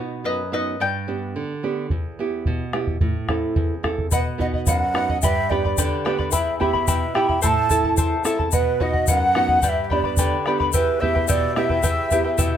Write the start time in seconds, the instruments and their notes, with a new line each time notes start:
Already playing: nylon-string guitar B2 B3 D#4 F#4, charango F#4 B4
0.24 nylon-string guitar F#2, charango B4 D#5
0.52 nylon-string guitar B3 D#4 F#4, charango B4 D#5
0.80 nylon-string guitar G2, charango D5 G5
1.08 nylon-string guitar B3 D4 G4
1.36 nylon-string guitar D3
1.63 nylon-string guitar B3 D4 G4
1.90 nylon-string guitar E2, bombo low
2.19 nylon-string guitar B3 E4 G4
2.46 nylon-string guitar B2, bombo low
2.73 nylon-string guitar B3 E4 G4, bombo rim
2.87 bombo low
3.01 nylon-string guitar A2, bombo low
3.29 nylon-string guitar C4 E4 A4, bombo rim, bombo low
3.56 nylon-string guitar E2, bombo low
3.83 nylon-string guitar C4 E4 A4, bombo rim, bombo low
3.98 bombo low
4.11 nylon-string guitar B2, charango B4 D#5 F#5, quena B4, bombo low, shaker
4.38 nylon-string guitar B3 D#4 F#4, charango B4 D#5 F#5, quena D#5, bombo low
4.54 charango D#5 F#5, bombo low
4.67 nylon-string guitar F#2, charango B4 D#5 F#5, quena F#5, bombo low, shaker
4.94 nylon-string guitar B3 D#4 F#4, charango B4 D#5 F#5, bombo rim
5.09 charango D#5 F#5, bombo low
5.22 nylon-string guitar G2, charango G4 B4 D5 G5 B5, quena E5, bombo low, shaker
5.50 nylon-string guitar B3 D4 G4, charango B4 D5 G5 B5, quena D5, bombo low
5.64 charango B4 D5 B5, bombo low
5.78 nylon-string guitar D3, charango G4 B4 D5 G5 B5, bombo low, shaker
6.05 nylon-string guitar B3 D4 G4, charango B4 D5 G5 B5, bombo rim
6.18 charango B4 D5 B5, bombo low
6.32 nylon-string guitar E2, charango E4 B4 E5 G5 B5, quena E5, bombo low, shaker
6.59 nylon-string guitar B3 E4 G4, charango E4 E5 G5 B5, quena E5, bombo low
6.73 charango E4 E5 B5, bombo low
6.87 nylon-string guitar B2, charango E4 B4 E5 G5 B5, bombo low, shaker
7.15 nylon-string guitar B3 E4 G4, charango E4 E5 G5 B5, quena G5, bombo rim
7.29 charango E4 E5 B5, bombo low
7.42 nylon-string guitar A2, charango E4 A4 C5 E5 A5, quena A5 B5, bombo low, shaker
7.47 quena A5
7.69 nylon-string guitar C4 E4 A4, charango E4 A4 E5 A5, bombo low, shaker
7.84 charango E4 A4 A5, bombo low
7.97 nylon-string guitar E2, charango E4 A4 C5 E5 A5, bombo low, shaker
8.24 nylon-string guitar C4 E4 A4, charango E4 A4 E5 A5, bombo rim, shaker
8.39 charango E4 A4 A5, bombo low
8.52 nylon-string guitar B2, charango B4 D#5 F#5, quena B4, bombo low, shaker
8.80 nylon-string guitar B3 D#4 F#4, charango B4 D#5 F#5, quena D#5, bombo low
8.93 charango D#5 F#5, bombo low
9.07 nylon-string guitar F#2, charango B4 D#5 F#5, quena F#5, bombo low, shaker
9.35 nylon-string guitar B3 D#4 F#4, charango B4 D#5 F#5, bombo rim
9.49 charango D#5 F#5, bombo low
9.62 nylon-string guitar G2, charango G4 B4 D5 G5 B5, quena F#5, bombo low, shaker
9.68 quena E5
9.83 quena E5
9.90 nylon-string guitar B3 D4 G4, charango B4 D5 G5 B5, quena D5, bombo low
10.03 charango B4 D5 B5, bombo low
10.17 nylon-string guitar D3, charango G4 B4 D5 G5 B5, bombo low, shaker
10.46 nylon-string guitar B3 D4 G4, charango B4 D5 G5 B5, bombo rim
10.60 charango B4 D5 B5, bombo low
10.73 nylon-string guitar E2, charango E4 G4 B4 E5 G5, quena B4 C5, bombo low, shaker
10.78 quena B4
11.00 nylon-string guitar B3 E4 G4, charango E4 B4 E5 G5, quena E5, bombo low
11.15 charango E4 B4 G5, bombo low
11.28 nylon-string guitar B2, charango E4 G4 B4 E5 G5, quena D5, bombo low, shaker
11.56 nylon-string guitar B3 E4 G4, charango E4 B4 E5 G5, quena E5, bombo rim
11.69 charango E4 B4 G5, bombo low
11.83 nylon-string guitar E2, charango E4 G4 B4 E5 G5, bombo low, shaker
12.11 nylon-string guitar B3 E4 G4, charango E4 B4 E5 G5, bombo low, shaker
12.24 charango E4 B4 G5
12.38 nylon-string guitar B2, charango E4 G4 B4 E5 G5, bombo low, shaker